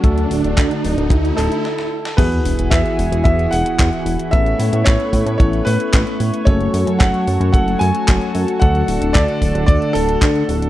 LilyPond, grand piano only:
\new Staff \with { instrumentName = "Grand piano" } { \time 4/4 \key e \mixolydian \tempo 4 = 112 r2 r8 a'4. | b'4 e''4 e''8 fis''4. | e''4 cis''4 cis''8 b'4. | cis''4 fis''4 fis''8 gis''4. |
fis''4 d''4 d''8 a'4. | }